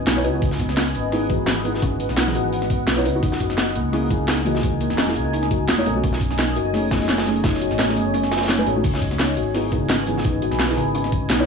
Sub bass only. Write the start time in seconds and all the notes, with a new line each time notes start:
0.07 B1
0.25 C#2
0.42 C#2
0.95 G#1
2.09 B1
2.35 G#1
2.88 B1
3.05 C#2
3.23 F#1
3.75 C#2
4.90 E1
5.16 C#2
5.69 E1
5.86 B1
6.04 B1
6.56 F#1
7.71 A1
7.97 F#1
8.67 A1
8.84 C#2
9.37 G#1
10.52 B1
10.77 G#1
11.30 B1